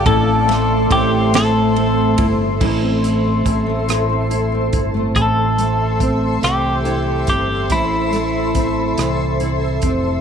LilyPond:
<<
  \new Staff \with { instrumentName = "Ambient pad" } { \time 6/8 \key a \minor \tempo 4. = 47 <a' c'' e'' c'''>2. | <a' c'' e'' c'''>2. | <a' c'' e'' c'''>2.~ | <a' c'' e'' c'''>2. | }
  \new Staff \with { instrumentName = "Clean electric guitar" } { \time 6/8 \key a \minor a'4 g'8 a'4 r8 | r2. | a'4. g'4 g'8 | e'2~ e'8 r8 | }
  \new Staff \with { instrumentName = "Nylon-string guitar" } { \time 6/8 \key a \minor <a, e'>8 a8 e'8 a8 c'8 e'8 | <a, e'>16 c'16 e'16 c'16 e'16 a16 <a, e'>16 c'16 e'16 c'16 e'16 a16 | a,8 a8 c'8 e8 e'8 c'8 | a,8 a8 c'8 e8 e'8 c'8 | }
  \new Staff \with { instrumentName = "Steel-string acoustic guitar" } { \time 6/8 \key a \minor <a, e a c' e' a'>8 <a c' e' a'>8 <a c' e' a'>8 <a, e a c' e' a'>8 <a c' e' a'>8 <a c' e' a'>8 | r2. | r2. | r2. | }
  \new Staff \with { instrumentName = "Fingered electric bass" } { \clef bass \time 6/8 \key a \minor a,,4 a,,4. g,,8 | a,,4 a,,4. g,,8 | a,,4. c,4 g,,8 | a,,4. c,4 f,,8 | }
  \new DrumStaff \with { instrumentName = "Drums" } \drummode { \time 6/8 <bd cymr>8 <cymr sn>8 <bd cymr>8 <cymr sn>8 cymr8 <bd cymr>8 | <cymc bd>8 <hh ss>8 <hh bd>8 <hh ss>8 hh8 <hh bd>8 | <hh bd>8 hh8 <hh bd>8 <hh ss>8 hh8 <hh bd>8 | <hh bd>8 <hh ss>8 <hh bd>8 <hh ss>8 hh8 <hh bd>8 | }
>>